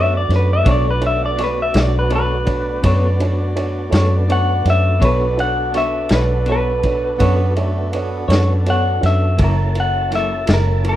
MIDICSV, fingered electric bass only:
0, 0, Header, 1, 2, 480
1, 0, Start_track
1, 0, Key_signature, 2, "minor"
1, 0, Tempo, 728244
1, 431, Time_signature, 12, 3, 24, 8
1, 7226, End_track
2, 0, Start_track
2, 0, Title_t, "Fingered electric bass"
2, 0, Program_c, 0, 33
2, 0, Note_on_c, 0, 42, 100
2, 165, Note_off_c, 0, 42, 0
2, 193, Note_on_c, 0, 42, 90
2, 413, Note_off_c, 0, 42, 0
2, 436, Note_on_c, 0, 35, 98
2, 1127, Note_off_c, 0, 35, 0
2, 1153, Note_on_c, 0, 35, 96
2, 1846, Note_off_c, 0, 35, 0
2, 1869, Note_on_c, 0, 42, 93
2, 2564, Note_off_c, 0, 42, 0
2, 2587, Note_on_c, 0, 42, 107
2, 3043, Note_off_c, 0, 42, 0
2, 3068, Note_on_c, 0, 42, 90
2, 3291, Note_off_c, 0, 42, 0
2, 3309, Note_on_c, 0, 35, 85
2, 4005, Note_off_c, 0, 35, 0
2, 4027, Note_on_c, 0, 35, 101
2, 4724, Note_off_c, 0, 35, 0
2, 4746, Note_on_c, 0, 42, 85
2, 5444, Note_off_c, 0, 42, 0
2, 5462, Note_on_c, 0, 42, 93
2, 5922, Note_off_c, 0, 42, 0
2, 5952, Note_on_c, 0, 42, 83
2, 6174, Note_off_c, 0, 42, 0
2, 6191, Note_on_c, 0, 30, 89
2, 6887, Note_off_c, 0, 30, 0
2, 6911, Note_on_c, 0, 30, 86
2, 7226, Note_off_c, 0, 30, 0
2, 7226, End_track
0, 0, End_of_file